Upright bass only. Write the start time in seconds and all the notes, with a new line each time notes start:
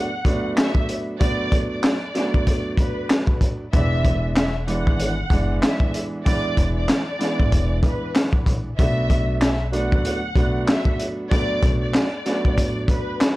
3.74 E1
4.87 G#1
5.31 F#1
6.58 E1
7.40 G#1
7.53 E1
8.47 A#1
8.79 B1
9.93 D2
10.36 B1
11.63 B1
12.45 D2
12.58 A1